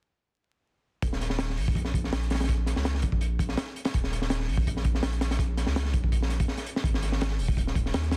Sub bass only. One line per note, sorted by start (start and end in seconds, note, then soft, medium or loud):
1.02 1.59 D#1 medium
1.57 2.11 A#1 medium
2.12 2.75 A#1 medium
2.76 3.05 C#2 medium
3.03 3.56 A#1 loud
3.94 4.50 D#1 medium
4.49 5.02 A#1 loud
5.03 5.66 A#1 medium
5.67 5.95 C#2 medium
5.94 6.47 A#1 loud
6.84 7.41 G#1 loud
7.39 7.92 D#1 loud
7.94 8.17 D#2 medium